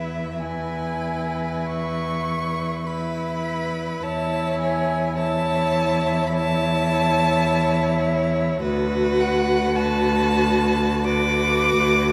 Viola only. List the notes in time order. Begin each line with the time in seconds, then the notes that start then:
Already playing: E4
0.40 E4
2.87 E4
4.04 E4
5.17 E4
6.32 E4
8.60 F#4
9.76 F#4
11.05 F#4